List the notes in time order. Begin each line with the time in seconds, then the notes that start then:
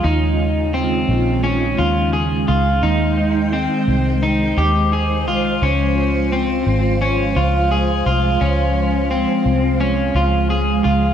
0.04 D#2 C#3 D#3 G#3 D#4 F4
0.74 C4
1.09 A#1
1.44 C#4
1.78 D#2 F4
2.13 G#4
2.48 C#2 F4
2.83 D#2 D#3 D#4 C5 G5
3.53 C4
3.88 C2
4.23 D#4
4.57 D#2 G4
4.93 G#4
5.28 C2 F4
5.62 C#2 F3 C#4 F4
6.32 C4
6.67 G#1
7.02 C#4
7.36 C#2 F4
7.71 G#4
8.06 C2 F4
8.41 C#2 C#4
9.11 C4
9.46 C2
9.81 C#4
10.15 C#2 F4
10.50 G#4
10.84 C#2 F4